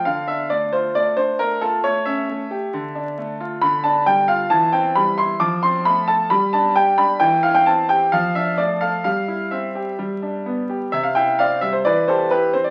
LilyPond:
\new Staff \with { instrumentName = "Grand piano" } { \time 4/4 \key d \minor \tempo 4 = 133 << { f''8 e''8 d''8 c''8 d''8 c''8 bes'8 a'8 | cis''8 e''2~ e''8 r4 | \key c \major b''8 a''8 g''8 f''8 a''8 g''8 b''8 c'''8 | d'''8 c'''8 b''8 a''8 b''8 a''8 g''8 b''8 |
g''8 f''16 g''16 a''8 g''8 f''8 e''8 d''8 f''8 | f''4 e''2 r4 | e''16 f''16 <e'' g''>8 <d'' f''>8 e''16 c''16 <b' d''>8 <a' c''>8 <g' b'>8 c''16 d''16 | } \\ { d8 d'8 a8 f'8 a8 d'8 a8 f'8 | a8 cis'8 a8 g'8 d8 d'8 a8 f'8 | d8 d'8 g8 f'8 e8 c'8 g8 e'8 | f8 c'8 a8 a'8 g8 d'8 g'8 d'8 |
e8 e'8 c'8 g'8 f8 d'8 a8 a'8 | g8 e'8 c'8 g'8 g8 d'8 b8 g'8 | c8 e'8 c'8 g8 e8 g'8 e'8 c'8 | } >> }